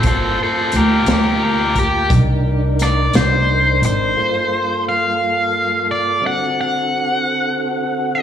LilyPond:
<<
  \new Staff \with { instrumentName = "Overdriven electric guitar" } { \time 12/8 \key g \minor \tempo 4. = 58 <a' c''>8 <a' c''>8 <g' bes'>8 <g' bes'>8 <g' bes'>8 g'8 r4 d''8 c''4 c''8~ | c''4 f''4. d''8 fis''8 fis''2~ fis''8 | }
  \new Staff \with { instrumentName = "Tonewheel organ" } { \time 12/8 \key g \minor <bes f' a''>2. <d' ees' bes'>2. | <g, bes f' a'>2. <d c' fis' a'>2. | }
  \new Staff \with { instrumentName = "Upright bass" } { \clef bass \time 12/8 \key g \minor g,,8 r8 d,8 d,4. c,4. c,4 aes,,8 | r1. | }
  \new DrumStaff \with { instrumentName = "Drums" } \drummode { \time 12/8 <hh bd>4 hh8 <hh sn>4 <hh bd>8 <hh bd>4 <hh sn>8 <hh sn>4 hh8 | r4. r4. r4. r4. | }
>>